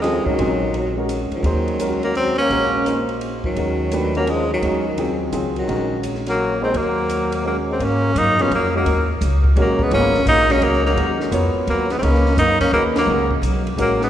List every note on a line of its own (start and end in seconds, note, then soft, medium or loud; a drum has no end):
0.00 0.22 D#2 medium
0.00 0.25 F3 medium
0.00 0.24 G3 soft
0.00 0.27 G#3 medium
0.00 0.24 C4 soft
0.00 snare soft
0.00 ride soft
0.04 0.25 F4 soft
0.04 0.25 A4 medium
0.24 0.96 D#3 medium
0.24 0.97 F#3 medium
0.24 0.57 G#3 soft
0.24 0.57 C#4 soft
0.24 0.58 F#4 soft
0.24 muted upright bass stroke soft
0.24 kick soft
0.28 0.58 A#4 medium
0.38 1.28 A#1 medium
0.38 0.60 F#3 soft
0.38 0.60 C4 soft
0.38 0.60 F4 soft
0.38 0.60 G#4 medium
0.38 ride soft
0.74 ride soft
0.96 1.42 G#3 soft
0.96 1.42 C#4 soft
0.96 1.42 F#4 soft
0.96 1.43 A#4 soft
1.09 hi-hat pedal soft
1.09 ride medium
1.31 1.99 D#3 medium
1.31 2.00 F#3 medium
1.31 muted upright bass stroke soft
1.31 ride soft
1.43 2.45 D#2 medium
1.43 1.78 A#3 soft
1.43 1.79 D#4 soft
1.43 1.79 G#4 soft
1.43 1.79 C5 medium
1.43 ride soft
1.68 ride soft
1.79 2.33 G#3 soft
1.79 2.34 C#4 soft
1.79 2.34 F#4 soft
1.79 2.34 A#4 medium
1.79 hi-hat pedal medium
1.79 ride medium
2.03 2.14 F#3 medium
2.03 2.15 A#3 medium
2.03 ride soft
2.15 2.36 F#3 medium
2.15 2.37 C4 medium
2.15 ride soft
2.38 3.05 A#3 medium
2.38 3.05 C#4 medium
2.50 3.52 A#1 medium
2.50 2.84 G#3 medium
2.50 2.85 C#4 soft
2.50 2.85 F#4 soft
2.50 2.85 A#4 medium
2.50 ride soft
2.86 3.40 A#3 soft
2.86 3.40 D#4 soft
2.86 3.40 G#4 soft
2.86 3.40 C5 soft
2.86 hi-hat pedal medium
2.86 ride soft
3.09 ride soft
3.21 ride soft
3.44 4.11 D#3 medium
3.44 4.11 F#3 medium
3.44 kick soft
3.55 4.58 D#2 medium
3.55 3.91 G#3 soft
3.55 3.91 C#4 soft
3.55 3.91 F#4 soft
3.55 3.91 A#4 soft
3.55 ride soft
3.92 4.13 A3 soft
3.92 4.13 D4 soft
3.92 4.13 G4 soft
3.92 4.14 B4 medium
3.92 hi-hat pedal soft
3.92 ride medium
4.15 4.29 F#3 medium
4.15 4.46 G#3 soft
4.15 4.31 A#3 medium
4.15 4.46 C#4 soft
4.15 4.47 F#4 soft
4.15 4.47 A#4 medium
4.15 ride soft
4.27 4.50 F3 medium
4.27 4.51 G#3 medium
4.27 ride soft
4.51 5.17 D#3 medium
4.51 5.18 F#3 medium
4.62 5.29 D#2 medium
4.62 4.83 G#3 medium
4.62 4.84 C#4 soft
4.62 4.84 F#4 soft
4.62 4.84 A#4 medium
4.62 ride soft
4.98 5.31 F#3 soft
4.98 5.32 C4 soft
4.98 5.32 F4 soft
4.98 5.33 G#4 medium
4.98 ride soft
5.32 5.65 C#2 medium
5.32 5.54 F#3 soft
5.32 5.54 C4 soft
5.32 5.54 F4 soft
5.32 5.54 G#4 medium
5.32 hi-hat pedal soft
5.32 ride soft
5.56 6.00 D#3 medium
5.56 6.01 F#3 medium
5.56 ride soft
5.68 6.70 A#1 medium
5.68 6.22 G#3 soft
5.68 6.22 C#4 soft
5.68 6.22 F#4 soft
5.68 6.23 A#4 medium
5.68 ride soft
6.03 hi-hat pedal soft
6.03 ride medium
6.15 snare soft
6.26 6.59 F#3 medium
6.26 6.61 A#3 medium
6.26 snare soft
6.26 ride soft
6.61 6.76 G#3 medium
6.61 6.73 A#3 medium
6.61 6.78 C4 medium
6.61 6.73 D#4 medium
6.61 6.73 G#4 medium
6.61 6.73 C5 medium
6.74 7.76 D#2 medium
6.74 7.45 F#3 medium
6.74 7.46 A#3 medium
6.74 ride soft
7.09 hi-hat pedal soft
7.09 ride medium
7.32 ride medium
7.44 7.56 F#3 medium
7.44 7.80 G#3 soft
7.44 7.57 A#3 medium
7.44 7.80 C#4 soft
7.44 7.81 F#4 soft
7.44 7.81 A#4 soft
7.69 7.82 G#3 medium
7.69 7.85 C4 medium
7.79 8.14 G#2 medium
7.79 8.17 A#3 medium
7.79 ride soft
7.84 8.20 C#4 medium
8.15 8.49 F#2 medium
8.15 8.39 A#3 medium
8.15 8.43 D#4 medium
8.15 hi-hat pedal soft
8.15 ride medium
8.38 8.49 F#3 medium
8.38 8.51 A#3 medium
8.38 8.50 B3 medium
8.38 8.52 C#4 medium
8.38 8.50 F4 medium
8.38 8.50 G#4 medium
8.38 ride soft
8.50 8.85 F2 medium
8.50 8.73 F#3 medium
8.50 ride medium
8.55 8.74 A#3 medium
8.74 9.07 F#3 medium
8.74 8.85 G#3 medium
8.74 9.08 A#3 medium
8.74 8.85 C#4 medium
8.74 8.86 F#4 medium
8.74 8.86 A#4 medium
8.85 9.20 D#2 medium
8.85 ride medium
9.21 9.55 C#2 medium
9.21 hi-hat pedal medium
9.21 ride medium
9.44 kick soft
9.56 9.90 A#1 medium
9.56 9.83 F#3 medium
9.56 10.10 G#3 medium
9.56 10.10 C#4 medium
9.56 10.11 F#4 medium
9.56 10.11 A#4 medium
9.56 ride soft
9.61 9.84 A#3 medium
9.79 9.93 G#3 medium
9.79 9.93 B3 medium
9.79 kick medium
9.91 10.25 G#1 medium
9.91 10.13 F#3 medium
9.91 10.25 A#3 medium
9.91 10.13 B3 medium
9.91 10.25 C#4 medium
9.91 10.13 F4 medium
9.91 10.13 G#4 medium
9.91 ride medium
10.15 snare soft
10.26 10.60 A#1 medium
10.26 10.50 A#3 medium
10.26 10.53 D#4 medium
10.26 hi-hat pedal medium
10.26 ride medium
10.49 10.94 G#3 medium
10.49 10.64 A#3 medium
10.49 10.95 C#4 medium
10.49 10.65 C#4 medium
10.49 10.95 F#4 medium
10.49 10.95 A#4 medium
10.49 snare soft
10.49 ride soft
10.61 10.95 C#2 medium
10.61 10.85 F#3 medium
10.61 10.86 A#3 medium
10.61 ride medium
10.74 snare soft
10.86 11.18 F#3 medium
10.86 11.19 A#3 medium
10.86 snare soft
10.96 11.31 D#2 medium
10.96 11.31 G#3 medium
10.96 11.31 C#4 medium
10.96 11.32 F#4 medium
10.96 11.32 A#4 medium
10.96 ride medium
11.20 snare soft
11.31 11.53 F2 medium
11.31 11.86 B3 medium
11.31 11.86 F4 medium
11.31 11.87 A#4 medium
11.31 11.87 C#5 medium
11.31 hi-hat pedal medium
11.31 ride medium
11.55 muted upright bass stroke soft
11.67 12.01 D#2 medium
11.67 11.93 F#3 medium
11.67 11.93 A#3 medium
11.67 ride medium
11.90 11.98 G#3 medium
11.90 11.98 B3 medium
11.90 snare soft
11.90 ride soft
11.98 12.36 C#2 medium
11.98 12.05 G#3 medium
11.98 12.04 C4 medium
12.03 12.24 A#3 medium
12.03 12.37 A#3 medium
12.03 12.38 C#4 medium
12.03 12.24 D#4 medium
12.03 12.24 G#4 soft
12.03 12.24 B4 medium
12.03 ride medium
12.14 snare soft
12.26 snare soft
12.37 12.71 F#2 medium
12.37 12.59 A#3 medium
12.37 12.60 D#4 medium
12.37 snare soft
12.37 hi-hat pedal medium
12.37 ride medium
12.60 12.72 A#3 medium
12.60 12.72 C#4 medium
12.60 kick soft
12.60 ride medium
12.72 13.06 D#2 medium
12.72 12.83 F#3 medium
12.72 12.94 A#3 medium
12.72 12.84 A#3 medium
12.72 12.94 D#4 medium
12.72 12.95 G#4 medium
12.72 12.95 B4 medium
12.96 13.29 F#3 medium
12.96 13.30 A#3 medium
12.96 snare medium
12.96 ride medium
13.07 13.41 C#2 medium
13.07 13.29 G#3 medium
13.07 13.29 C#4 medium
13.07 13.29 F#4 medium
13.07 13.30 A#4 medium
13.31 kick medium
13.42 13.76 B1 medium
13.42 hi-hat pedal medium
13.42 ride medium
13.67 ride soft
13.77 14.10 A1 medium
13.77 14.00 F#3 medium
13.77 13.99 G#3 medium
13.77 13.99 C#4 medium
13.77 14.00 F#4 medium
13.77 14.00 A#4 medium
13.77 hi-hat pedal medium
13.77 ride medium
13.81 14.01 A#3 medium
14.00 14.10 G#3 medium
14.00 14.10 B3 medium
14.00 snare soft